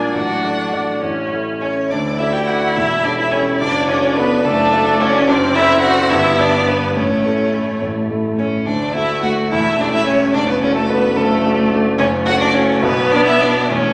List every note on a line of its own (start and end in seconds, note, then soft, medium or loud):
0.00 0.17 A#1 medium
0.00 0.12 D4 medium
0.00 0.17 D4 medium
0.00 0.16 F4 medium
0.00 0.13 G#4 medium
0.00 0.17 A#4 medium
0.00 0.14 G#5 medium
0.13 0.43 A1 medium
0.13 1.00 F#3 medium
0.13 1.00 D4 medium
0.13 1.00 F#4 medium
0.13 1.02 F#5 loud
0.44 0.70 D4 medium
0.44 0.70 A4 medium
0.44 0.71 D5 medium
0.72 0.99 D4 medium
0.72 0.99 A4 medium
0.72 1.00 D5 medium
1.02 1.31 A1 medium
1.02 1.69 C#4 medium
1.32 1.59 E4 soft
1.32 1.59 A4 soft
1.32 1.59 C#5 medium
1.61 1.92 C#4 medium
1.61 1.69 C#4 medium
1.61 1.88 E4 soft
1.61 1.88 A4 medium
1.61 1.92 C#5 medium
1.61 1.89 C#5 medium
1.90 2.19 D2 medium
1.90 2.19 D3 medium
1.90 2.20 D4 medium
1.90 1.99 D4 medium
1.90 3.62 E4 medium
1.90 2.20 D5 medium
2.18 2.34 E4 medium
2.18 2.32 E4 medium
2.18 2.45 F#4 medium
2.18 2.46 A4 medium
2.18 2.46 D5 medium
2.18 2.35 E5 loud
2.33 2.39 G4 medium
2.33 2.46 G4 medium
2.33 2.49 G5 medium
2.47 2.55 F#4 medium
2.47 2.75 F#4 medium
2.47 2.74 F#4 medium
2.47 2.74 A4 medium
2.47 2.75 D5 medium
2.47 2.78 F#5 medium
2.75 3.04 E1 medium
2.75 3.04 E2 medium
2.75 2.83 E4 medium
2.75 3.04 E4 medium
2.75 3.06 E5 loud
3.04 3.10 D4 medium
3.04 3.10 D4 loud
3.04 3.30 G4 medium
3.04 3.31 A4 medium
3.04 3.31 C#5 medium
3.04 3.18 D5 medium
3.18 3.24 E4 medium
3.18 3.33 E5 loud
3.31 3.39 C#4 medium
3.31 3.61 C#4 medium
3.31 3.59 G4 medium
3.31 3.59 A4 medium
3.31 3.60 C#5 loud
3.31 3.59 C#5 medium
3.60 3.88 F#1 medium
3.60 3.88 F#2 medium
3.60 3.89 D4 loud
3.60 4.45 D4 medium
3.60 3.69 D4 medium
3.60 3.87 D5 loud
3.87 4.17 C#4 loud
3.87 3.97 C#4 loud
3.87 4.14 F#4 medium
3.87 4.14 A4 medium
3.87 4.16 C#5 loud
3.87 4.15 D5 medium
4.16 4.44 B3 loud
4.16 4.42 F#4 medium
4.16 4.42 A4 medium
4.16 4.46 B4 loud
4.16 4.43 D5 medium
4.44 4.72 F#1 medium
4.44 4.72 F#2 medium
4.44 5.02 A3 loud
4.44 5.26 D4 medium
4.44 5.01 A4 loud
4.73 4.98 F#4 medium
4.73 4.98 A4 medium
4.73 4.98 D5 medium
5.00 5.27 C#4 loud
5.00 5.25 F#4 medium
5.00 5.25 A4 medium
5.00 5.29 C#5 loud
5.00 5.26 D5 medium
5.28 5.54 F#1 medium
5.28 5.54 F#2 loud
5.28 6.12 C4 loud
5.28 5.36 D4 loud
5.28 5.56 D5 loud
5.54 5.80 D4 medium
5.54 5.84 E4 loud
5.54 5.82 E4 loud
5.54 5.80 A4 medium
5.54 5.81 C5 medium
5.54 5.81 E5 loud
5.81 6.08 D4 medium
5.81 6.11 F#4 loud
5.81 6.08 A4 medium
5.81 6.08 C5 medium
5.81 6.11 F#5 loud
6.10 6.38 G1 medium
6.10 6.38 G2 loud
6.10 6.96 B3 loud
6.10 6.41 E4 loud
6.10 6.40 E4 loud
6.10 6.41 E5 loud
6.39 6.67 D4 loud
6.39 6.66 D4 medium
6.39 6.66 G4 medium
6.39 6.66 B4 medium
6.39 6.70 D5 loud
6.68 6.98 B3 medium
6.68 6.99 B3 medium
6.68 6.94 D4 medium
6.68 6.94 G4 medium
6.68 6.95 B4 loud
6.68 6.94 B4 medium
6.96 7.24 A1 medium
6.96 7.24 A2 medium
6.96 8.44 A3 medium
6.96 7.82 C#4 medium
6.96 7.80 C#5 loud
7.25 7.50 A3 medium
7.25 7.51 E4 soft
7.25 7.51 A4 medium
7.53 7.79 A3 medium
7.53 7.79 E4 medium
7.53 7.79 A4 medium
7.81 8.09 A1 medium
7.81 8.09 A2 medium
8.10 8.36 A3 soft
8.10 8.36 E4 soft
8.10 8.36 A4 medium
8.37 8.64 A3 soft
8.37 8.67 C#4 medium
8.37 8.47 C#4 medium
8.37 8.64 E4 soft
8.37 8.65 A4 medium
8.37 8.47 C#5 medium
8.66 8.94 D2 medium
8.66 8.94 D3 medium
8.66 9.48 A3 medium
8.66 8.93 D4 medium
8.66 8.94 D4 medium
8.66 8.94 D5 medium
8.94 9.21 A3 medium
8.94 9.22 E4 medium
8.94 9.23 E4 medium
8.94 9.21 F#4 medium
8.94 9.21 A4 medium
8.94 9.22 E5 loud
9.22 9.49 A3 medium
9.22 9.50 F#4 medium
9.22 9.31 F#4 loud
9.22 9.49 F#4 medium
9.22 9.49 A4 medium
9.22 9.31 F#5 medium
9.50 9.79 E1 medium
9.50 9.79 E2 medium
9.50 10.33 A3 medium
9.50 9.78 E4 loud
9.50 9.78 E4 medium
9.50 9.82 E5 loud
9.78 10.05 C#4 medium
9.78 9.93 D4 medium
9.78 10.05 G4 medium
9.78 10.05 A4 medium
9.78 9.94 D5 loud
9.93 9.99 E4 medium
9.93 10.06 E4 medium
9.93 10.07 E5 loud
10.06 10.14 C#4 medium
10.06 10.37 C#4 medium
10.06 10.32 C#4 medium
10.06 10.33 G4 medium
10.06 10.33 A4 medium
10.06 10.34 C#5 loud
10.34 10.61 F#1 medium
10.34 10.61 F#2 medium
10.34 11.15 A3 medium
10.34 10.40 D4 loud
10.34 10.51 D4 loud
10.34 10.48 D5 loud
10.47 10.53 B3 medium
10.47 10.62 B3 medium
10.47 10.62 B4 medium
10.60 10.75 C#4 loud
10.60 10.78 C#4 medium
10.60 10.87 D4 medium
10.60 10.87 F#4 medium
10.60 10.87 A4 medium
10.60 10.68 C#5 loud
10.75 10.81 A3 medium
10.75 10.92 A3 medium
10.75 10.91 A4 loud
10.89 11.18 B3 medium
10.89 11.19 B3 loud
10.89 11.14 D4 medium
10.89 11.14 F#4 medium
10.89 11.14 A4 medium
10.89 11.18 B4 loud
11.16 11.43 F#1 medium
11.16 11.43 F#2 medium
11.16 11.71 A3 loud
11.16 11.72 A3 loud
11.16 11.98 A3 loud
11.16 11.71 A4 loud
11.45 11.69 D4 medium
11.45 11.69 F#4 medium
11.45 11.70 A4 medium
11.72 11.96 D4 medium
11.72 11.97 F#4 medium
11.72 11.97 A4 medium
11.98 12.26 F#1 medium
11.98 12.26 F#2 medium
11.98 12.85 A3 medium
11.98 12.06 C#4 loud
11.98 12.07 C#4 loud
11.98 12.06 C#5 loud
12.26 12.52 C#4 medium
12.26 12.39 F#4 loud
12.26 12.32 F#4 loud
12.26 12.53 F#4 medium
12.26 12.52 A4 medium
12.26 12.40 F#5 loud
12.40 12.54 D4 loud
12.40 12.46 D4 loud
12.40 12.55 D5 loud
12.54 12.84 C#4 medium
12.54 12.82 C#4 loud
12.54 12.80 C#4 medium
12.54 12.81 F#4 medium
12.54 12.81 A4 medium
12.54 12.83 C#5 loud
12.82 13.11 B1 loud
12.82 13.11 B2 medium
12.82 13.12 B3 loud
12.82 12.91 B3 loud
12.82 13.71 B3 loud
12.82 13.13 B4 loud
13.10 13.24 D4 loud
13.10 13.28 D4 loud
13.10 13.39 D4 medium
13.10 13.39 F#4 medium
13.10 13.39 B4 medium
13.10 13.26 D5 loud
13.25 13.40 E4 loud
13.25 13.43 E5 loud
13.40 13.69 D4 loud
13.40 13.68 D4 medium
13.40 13.72 D4 loud
13.40 13.68 F#4 medium
13.40 13.68 B4 medium
13.40 13.70 D5 loud
13.70 13.93 E1 medium
13.70 13.93 E2 medium
13.70 13.93 A3 medium
13.70 13.93 C#4 loud
13.70 13.93 C#4 medium
13.70 13.93 C#5 loud